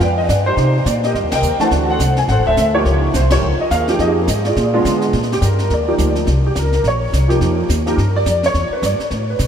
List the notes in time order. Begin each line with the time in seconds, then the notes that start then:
0.00 F2 B4 D5 G5, brush sweep, kick, snare
0.18 D#5
0.29 G2 D5, kick, snare, hi-hat pedal
0.46 D#4 G4 C5
0.57 C3, brush sweep, kick, snare
0.85 A#2 D5, kick, snare, hi-hat pedal
1.04 G4 A#4 D#5, snare
1.14 G2, brush sweep, kick, snare
1.23 D#2
1.32 C2 A#4 D#5 G5, snare, ride
1.42 D#2, hi-hat pedal
1.58 E3 A3 D4 F#4 F#5 A5, muted upright bass stroke, snare
1.63 C5
1.71 D2, brush sweep, kick, snare
1.90 A4 C5 F#5
1.99 C2, kick, snare, hi-hat pedal
2.17 G#5, snare
2.28 A1 A4 C5 F#5, brush sweep, kick, snare
2.36 F#1
2.45 D1 A4 C5 E5
2.57 D2, kick, snare, hi-hat pedal
2.74 F3 A#3 D#4 F4 G4 A#4 C#5
2.85 C#2, brush sweep, kick, snare
3.14 C2 C5, kick, snare, hi-hat pedal
3.31 F3 A#3 D#4 F4 G4 A#4 C#5, snare, ride
3.42 C#2, brush sweep
3.58 D#5, muted upright bass stroke
3.70 D#2 G#4 A#4 F5, kick, snare, hi-hat pedal
3.88 F3 A#3 D#4 G4, snare
3.99 F2 G4 G#4 D#5, brush sweep, kick, snare
4.28 G#2, kick, snare, hi-hat pedal
4.45 F4 G#4 D5, snare
4.56 A#2, brush sweep, kick, snare
4.73 G#3 B3 D4 F4
4.85 D3, kick, snare, hi-hat pedal
5.02 snare
5.13 A#2, brush sweep, kick, snare
5.23 snare
5.32 G4, snare
5.41 G2 A#4, kick, snare, hi-hat pedal
5.59 A#4, snare
5.70 D#2 D5, brush sweep, kick, snare
5.88 F3 A#3 D#4 G4
5.98 D2, kick, snare, hi-hat pedal
6.15 snare
6.26 C2, brush sweep, kick, snare
6.47 G4
6.55 C#2 A#4, kick, snare, hi-hat pedal
6.73 A#4, snare
6.84 A#1, brush sweep, kick, snare
6.88 C#5
7.12 C2, kick, snare, hi-hat pedal
7.28 F3 A#3 D#4 G4, snare
7.41 F2, brush sweep, kick, snare
7.69 D#2, kick, snare, hi-hat pedal
7.86 F3 A#3 D#4 G4 A#4, snare
7.97 G2, brush sweep, kick, snare
8.16 D5
8.25 F2, kick, snare, hi-hat pedal
8.43 C#5, snare
8.54 E2, brush sweep, kick, snare
8.70 B4, muted upright bass stroke
8.82 G2 D5, kick, snare, hi-hat pedal
8.99 muted upright bass stroke, snare
9.11 A2, brush sweep, kick, snare
9.30 B4
9.39 B2, kick, snare, hi-hat pedal